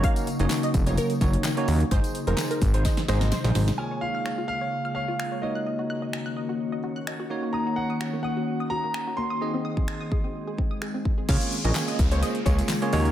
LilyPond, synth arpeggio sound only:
\new Staff \with { instrumentName = "Synth arpeggio sound" } { \time 4/4 \key des \major \tempo 4 = 128 r1 | r1 | f'''16 des''16 f'16 f'''16 des''16 f'16 f'''16 des''16 r16 f'''16 des''16 f'16 f'''16 des''16 ges'16 ges'''16 | ees''16 ges'16 ges'''16 ees''16 r16 ges'''16 ees''16 ges'16 r16 ees''16 ges'16 ges'''16 ees''16 ges'16 r16 ges'16 |
ees'''16 ges'16 bes16 ees'''16 ges'16 bes16 ees'''16 ges'16 r16 ees'''16 ges'16 bes16 ees'''16 ges'16 bes16 ees'''16 | aes'16 c'16 ees'''16 aes'16 r16 ees'''16 aes'16 c'16 r16 aes'16 c'16 ees'''16 aes'16 c'16 r16 aes'16 | r1 | }